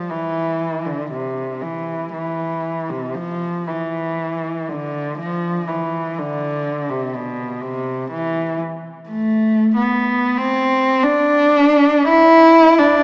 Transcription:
cello
Already playing: F3
0.10 E3
0.85 D3
1.11 C3
1.61 E3
2.12 E3
2.89 C3
3.14 F3
3.67 E3
4.68 D3
5.18 F3
5.67 E3
6.18 D3
6.89 C3
7.15 B2
7.61 C3
8.10 E3
9.09 A3
9.76 B3
10.37 C4
11.03 D4
12.08 E4
12.78 D4

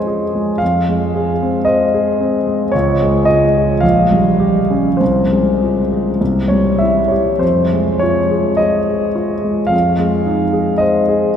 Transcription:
grand piano
Already playing: F2 G#3 F4 G#4 C5 C#5 D#5
0.07 G#4
0.35 G#3
0.58 F2 F5
0.88 G#3
1.15 G#4
1.43 C4
1.65 C5 D#5
1.94 G#4
2.21 C4
2.47 G#3
2.72 C#2 C#5
3.02 G#3
3.25 F4 D#5
3.57 G#4
3.80 A#1 F5
4.12 G3
4.40 G4
4.70 C#4
4.97 C2 C5
5.32 G#3
5.63 F4
5.91 G#4
6.21 C2
6.48 G3 C#5
6.79 E4 E5
7.08 G4 C#5
7.38 F2 C5
7.73 G#3
7.99 F4 C#5
8.31 G#4
8.57 F4 D#5
8.88 G#4
9.15 F4
9.44 G#3
9.67 F2 F5
9.99 G#3
10.26 D#4
10.53 G#4
10.78 C5 D#5
11.08 G#4

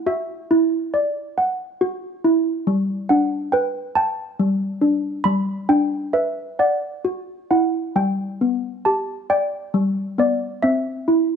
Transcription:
handbells
0.06 F#4 E5
0.51 E4
0.94 D5
1.38 F#5
1.81 F#4
2.24 E4
2.67 G3
3.09 D4 F#5
3.52 B4 G5
3.95 G5 A5
4.39 G3
4.81 D4
5.24 G3 B5
5.69 D4 G5
6.13 B4 E5
6.59 D5 F#5
7.05 F#4
7.51 E4 F#5
7.96 G3 G5
8.41 B3
8.85 G4 A5
9.30 D5 G5
9.74 G3
10.18 B3 D5
10.63 C4 E5
11.08 E4

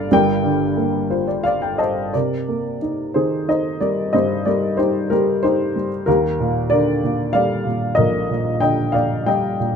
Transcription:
upright piano
Already playing: G1 G2 D3 A#3 D4 A4 A#4 D5 F5
0.11 G1 G2 A#4 D5 G5
0.44 D3
0.77 A#3
1.10 F4 C5
1.28 D5
1.44 D5 F5
1.62 G5
1.78 C5 D#5 A5
2.13 C3 A#4 D5
2.48 A#3
2.82 D#4
3.14 D#3 G#4 C5
3.48 D#4 C5 D#5
3.81 G3 A#4 D5
4.13 G2 C5 D#5
4.45 G3 A#4 D5
4.77 D#4 G4 C5
5.10 G3 G4 A#4
5.43 D#4 G4 C5
5.76 G3
6.06 D#2 G4 A#4
6.40 A#2
6.70 D3 A#4 D5
7.04 A#2
7.33 G3 D5 F5
7.66 A#2
7.95 A#1 A#4 D#5
8.30 A#2
8.60 D3 D#5 G5
8.92 A#2 D5 F5
9.26 G3 D#5 G5
9.60 A#2

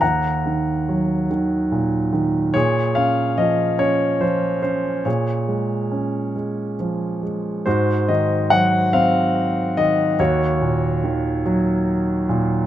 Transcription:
grand piano
0.01 D#2 F#5 A#5
0.46 D#3
0.89 F#3
1.31 D#3
1.72 A#2
2.13 D#3
2.54 A#2 G#4 C#5
2.95 C#4 F5
3.37 F3 D#5
3.79 C#4 C#5
4.21 F3 C5
4.62 C#4 C5
5.05 A#2 G#4 C#5
5.48 G#3
5.92 C#4
6.36 G#3
6.80 F3
7.23 G#3
7.66 G#2 F#4 C5
8.08 D#3 D#5
8.50 F#3 F#5
8.93 C4 F5
9.77 D#3 D#5
10.19 D#2 F#4 C#5
10.61 A#2
11.04 D#3
11.46 F#3
12.29 A#2

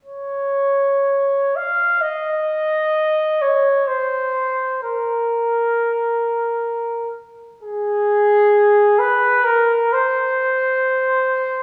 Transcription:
trumpet
0.05 C#5
1.56 F5
2.01 D#5
3.42 C#5
3.87 C5
4.83 A#4
7.63 G#4
8.99 B4
9.44 A#4
9.93 C5

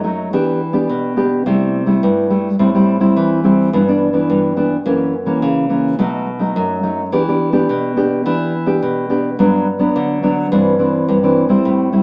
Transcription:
nylon-string guitar
Already playing: F#2
0.04 F#3 A3 D#4
0.33 E3 B3 D4 G4
0.73 B3 D4 G4
0.89 B2
1.17 B3 D4 G4
1.46 C3 G3 A3 E4
1.86 G3 A3 E4
2.03 G2
2.30 G3 A3 E4
2.59 A2 G3 C4 E4
2.75 G3 C4 E4
3.00 G3 C4 E4
3.16 E3
3.44 G3 C4 E4
3.73 G2 E3 B3 D4
3.88 E3 B3 D4
4.13 E3 B3 D4
4.30 G2
4.57 E3 B3 D4
4.86 F#2 E3 A#3 C#4
5.26 E3 A#3 C#4
5.42 C#3
5.69 E3 A#3 C#4
5.99 B2 F#3 A3 D#4
6.39 F#3 A3 D#4
6.56 F#2
6.83 F#3 A3 D#4
7.12 E3 B3 D4 G4
7.28 B3 D4 G4
7.52 B3 D4 G4
7.69 B2
7.96 B3 D4 G4
8.26 E3 B3 D4 G4
8.66 B3 D4 G4
8.83 B2
9.10 B3 D4 G4
9.39 G2 F#3 B3 D4
9.79 F#3 B3 D4
9.96 D3
10.23 F#3 B3 D4
10.52 G2 E3 C4 D4
10.79 E3 C4 D4
11.08 G2
11.23 E3 C4 D4
11.49 G3 C4 E4
11.65 A2
11.92 G3 C4 E4

